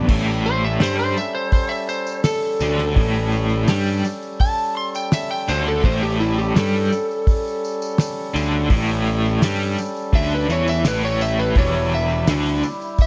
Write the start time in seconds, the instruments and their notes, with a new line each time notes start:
0.08 picked electric bass A1, overdriven electric guitar A2, harmonium G3 C#4 A4, kick, crash
0.46 electric slide guitar C5, tambourine
0.64 electric slide guitar E5, tambourine
0.80 picked electric bass G2, overdriven electric guitar G3, electric slide guitar C5, snare, open hi-hat, tambourine
0.99 electric slide guitar C5, tambourine
1.17 electric slide guitar E5, tambourine
1.35 electric slide guitar C5
1.52 electric slide guitar C5, kick, open hi-hat, tambourine
1.69 electric slide guitar E5, tambourine
1.89 electric slide guitar C5, tambourine
2.07 tambourine
2.24 electric slide guitar A4, snare, open hi-hat, tambourine
2.43 tambourine
2.60 picked electric bass D2, overdriven electric guitar D3, tambourine
2.78 snare
2.96 picked electric bass A1, overdriven electric guitar A2, kick, open hi-hat
3.32 tambourine
3.49 tambourine
3.68 picked electric bass G2, overdriven electric guitar G3, snare, open hi-hat, tambourine
3.88 tambourine
4.05 tambourine
4.23 tambourine
4.40 electric slide guitar A5, kick, open hi-hat, tambourine
4.58 tambourine
4.77 electric slide guitar C6
4.95 electric slide guitar G5, tambourine
5.12 electric slide guitar E5, snare, open hi-hat, tambourine
5.31 electric slide guitar G5, tambourine
5.48 picked electric bass D2, overdriven electric guitar D3, electric slide guitar C5, tambourine
5.68 electric slide guitar A4
5.84 picked electric bass A1, overdriven electric guitar A2, electric slide guitar C5, kick, open hi-hat
6.03 electric slide guitar G4
6.20 electric slide guitar E4, tambourine
6.38 electric slide guitar G4, tambourine
6.55 picked electric bass G2, overdriven electric guitar G3, electric slide guitar A4, snare, open hi-hat, tambourine
6.92 tambourine
7.11 tambourine
7.27 kick, open hi-hat, tambourine
7.48 tambourine
7.65 tambourine
7.82 tambourine
7.98 snare, open hi-hat, tambourine
8.19 tambourine
8.34 picked electric bass D2, overdriven electric guitar D3, tambourine
8.70 picked electric bass A1, overdriven electric guitar A2, kick, open hi-hat, tambourine
8.89 tambourine
9.06 tambourine
9.25 tambourine
9.42 picked electric bass G2, overdriven electric guitar G3, snare, open hi-hat, tambourine
9.60 tambourine
9.78 tambourine
9.96 tambourine
10.13 picked electric bass D2, overdriven electric guitar D3, electric slide guitar E5, kick, open hi-hat, tambourine
10.32 electric slide guitar B4, tambourine
10.48 picked electric bass E2, overdriven electric guitar E3, electric slide guitar C#5, tambourine
10.68 electric slide guitar E5, tambourine
10.84 picked electric bass A1, overdriven electric guitar A2, electric slide guitar B4, snare, open hi-hat, tambourine
11.04 electric slide guitar C#5, tambourine
11.21 electric slide guitar E5, tambourine
11.39 electric slide guitar B4, tambourine
11.55 picked electric bass E1, overdriven electric guitar E2, harmonium G3 E4 G4, electric slide guitar C#5, kick, open hi-hat
11.92 electric slide guitar E5, tambourine
12.09 tambourine
12.27 picked electric bass D2, overdriven electric guitar D3, snare, open hi-hat, tambourine
12.45 tambourine
12.63 tambourine
12.81 tambourine
12.99 electric slide guitar E5, kick, open hi-hat, tambourine